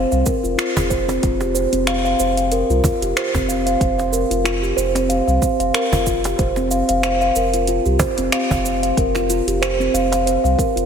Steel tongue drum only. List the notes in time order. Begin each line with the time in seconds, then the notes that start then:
0.12 F5
0.26 A#4
0.43 F4
0.58 F4
0.76 G#4
0.90 C5
1.08 C4
1.23 F4
1.40 G4
1.55 C5
1.72 C4
1.87 F5
2.05 F5
2.20 C5
2.37 F5
2.52 A#4
2.70 F4
2.84 F4
3.02 G4
3.17 C5
3.34 C4
3.49 F5
3.66 F5
3.80 C5
3.98 F5
4.12 A#4
4.30 F4
4.44 F4
4.62 G4
4.77 C5
4.95 C4
5.09 F5
5.27 F5
5.42 C5
5.60 F5
5.74 A#4
5.92 F4
6.07 F4
6.25 G4
6.39 C5
6.57 C4
6.71 F5
6.89 F5
7.04 C5
7.21 F5
7.36 A#4
7.54 F4
7.68 F4
7.86 G4
8.00 C5
8.18 C4
8.32 F5
8.51 F5
8.65 C5
8.83 F5
8.98 A#4
9.15 F4
9.30 F4
9.48 G4
9.62 C5
9.80 C4
9.94 F5
10.12 F5
10.26 C5
10.44 F5
10.58 A#4
10.76 F4